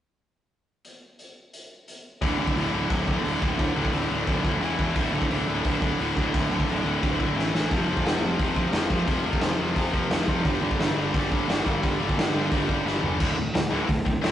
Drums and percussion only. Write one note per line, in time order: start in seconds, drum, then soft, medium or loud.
0.85 closed hi-hat soft
1.19 closed hi-hat medium
1.53 closed hi-hat medium
1.88 closed hi-hat medium
2.22 kick loud
2.22 open hi-hat medium
2.47 kick medium
2.56 open hi-hat medium
2.90 kick loud
2.90 open hi-hat medium
3.08 kick medium
3.25 open hi-hat soft
3.42 kick medium
3.59 kick loud
3.59 open hi-hat soft
3.85 kick medium
3.93 open hi-hat medium
4.27 kick loud
4.27 open hi-hat soft
4.45 kick medium
4.61 open hi-hat soft
4.79 kick medium
4.95 kick loud
4.95 open hi-hat medium
5.22 kick medium
5.30 open hi-hat medium
5.64 kick loud
5.64 open hi-hat medium
5.82 kick medium
5.99 open hi-hat medium
6.17 kick medium
6.34 kick loud
6.34 open hi-hat medium
6.60 kick medium
6.68 open hi-hat medium
7.03 kick loud
7.03 open hi-hat medium
7.20 kick medium
7.38 snare medium
7.55 snare medium
7.71 kick loud
7.71 open hi-hat soft
7.97 kick medium
8.06 snare loud
8.06 open hi-hat soft
8.39 kick loud
8.39 open hi-hat medium
8.56 kick medium
8.73 snare loud
8.73 open hi-hat medium
8.90 kick medium
9.07 kick loud
9.07 open hi-hat medium
9.33 kick medium
9.41 snare loud
9.41 open hi-hat medium
9.76 kick medium
9.76 open hi-hat medium
9.94 kick medium
10.11 snare loud
10.11 open hi-hat medium
10.28 kick medium
10.45 kick loud
10.45 open hi-hat soft
10.71 kick medium
10.80 snare loud
10.80 open hi-hat medium
11.14 kick loud
11.14 open hi-hat medium
11.32 kick medium
11.49 snare loud
11.49 open hi-hat medium
11.66 kick medium
11.83 kick loud
11.83 open hi-hat medium
12.09 kick medium
12.18 snare loud
12.18 open hi-hat medium
12.52 kick loud
12.52 open hi-hat medium
12.69 kick medium
12.87 snare medium
13.03 floor tom medium
13.20 kick loud
13.20 crash loud
13.55 snare loud
13.55 open hi-hat medium
13.89 kick loud
13.89 open hi-hat medium
14.06 kick medium
14.23 snare loud
14.23 open hi-hat medium